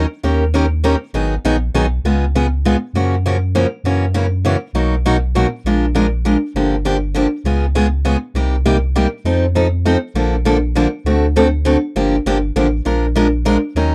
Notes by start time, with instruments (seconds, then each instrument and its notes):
0.23 sub bass D#2, steel-string acoustic guitar D#3 A#3 C#4 G4 A#4
0.54 steel-string acoustic guitar D#3 A#3 C#4 G4 A#4
0.84 steel-string acoustic guitar D#3 A#3 C#4 G4 A#4
1.13 sub bass G#1, steel-string acoustic guitar D#3 F#3 B3 D#4 G#4
1.44 sub bass A#1, steel-string acoustic guitar D#3 F#3 B3 D#4 G#4
1.74 sub bass B1, steel-string acoustic guitar D#3 F#3 B3 D#4 G#4
2.04 sub bass C#2, steel-string acoustic guitar C#3 G#3 B3 F4 G#4
2.35 steel-string acoustic guitar C#3 G#3 B3 F4 G#4
2.65 steel-string acoustic guitar C#3 G#3 B3 F4 G#4
2.93 sub bass F#2, steel-string acoustic guitar C#3 F3 A#3 C#4 F#4
3.26 steel-string acoustic guitar C#3 F3 A#3 C#4 F#4
3.55 steel-string acoustic guitar C#3 F3 A#3 C#4 F#4
3.84 sub bass F#2, steel-string acoustic guitar C#3 E3 A#3 C#4 F#4
4.14 steel-string acoustic guitar C#3 E3 A#3 C#4 F#4
4.45 steel-string acoustic guitar C#3 E3 A#3 C#4 F#4
4.73 sub bass B1, steel-string acoustic guitar B2 F#3 A#3 D#4 F#4
5.06 steel-string acoustic guitar B2 F#3 A#3 D#4 F#4
5.35 steel-string acoustic guitar B2 F#3 A#3 D#4 F#4
5.64 sub bass A#1, steel-string acoustic guitar F3 G#3 D4 F4 A#4
5.95 steel-string acoustic guitar F3 G#3 D4 F4 A#4
6.25 steel-string acoustic guitar F3 G#3 D4 F4 A#4
6.54 sub bass G1, steel-string acoustic guitar D3 F3 A#3 D4 G4
6.85 steel-string acoustic guitar D3 F3 A#3 D4 G4
7.14 steel-string acoustic guitar D3 F3 A#3 D4 G4
7.44 sub bass C#2, steel-string acoustic guitar C#3 G#3 B3 F4 G#4
7.75 steel-string acoustic guitar C#3 G#3 B3 F4 G#4
8.05 steel-string acoustic guitar C#3 G#3 B3 F4 G#4
8.34 sub bass C2, steel-string acoustic guitar C3 G3 A#3 D#4 G4
8.65 steel-string acoustic guitar C3 G3 A#3 D#4 G4
8.95 steel-string acoustic guitar C3 G3 A#3 D#4 G4
9.24 sub bass F2, steel-string acoustic guitar F3 C4 D#4 A4
9.55 steel-string acoustic guitar F3 C4 D#4 A4
9.85 steel-string acoustic guitar F3 C4 D#4 A4
10.14 sub bass A#1, steel-string acoustic guitar D3 F3 A#3 D4 A4
10.45 steel-string acoustic guitar D3 F3 A#3 D4 A4
10.75 steel-string acoustic guitar D3 F3 A#3 D4 A4
11.04 sub bass D2, steel-string acoustic guitar D3 A3 C4 F#4 A4
11.36 steel-string acoustic guitar D3 A3 C4 F#4 A4
11.65 steel-string acoustic guitar D3 A3 C4 F#4 A4
11.95 sub bass G1, steel-string acoustic guitar D3 F3 A#3 D4 G4
12.25 sub bass G1, steel-string acoustic guitar D3 F3 A#3 D4 G4
12.55 sub bass A1, steel-string acoustic guitar D3 F3 A#3 D4 G4
12.85 sub bass A#1, steel-string acoustic guitar F3 G#3 D4 F4 A#4
13.15 steel-string acoustic guitar F3 G#3 D4 F4 A#4
13.45 steel-string acoustic guitar F3 G#3 D4 F4 A#4
13.75 sub bass D#2, steel-string acoustic guitar D#3 F#3 C#4 D#4 A#4